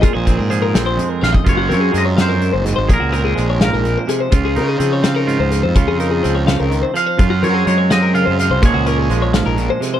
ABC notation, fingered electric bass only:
X:1
M:6/8
L:1/16
Q:3/8=84
K:Gblyd
V:1 name="Fingered electric bass" clef=bass
z B,,,2 A,,3 B,,,2 z2 B,,, z | G,,,2 G,,2 G,,4- G,, G,,,2 A,,, | B,,, D,,3 B,,,3 B,,,2 z3 | D,,2 D,2 D,4- D, D,,2 F,, |
D,, F,,3 D,,3 D,,2 z3 | G,,2 G,2 G,4- G, G,,2 C,, | B,,, D,,3 B,,,3 B,,,2 z3 |]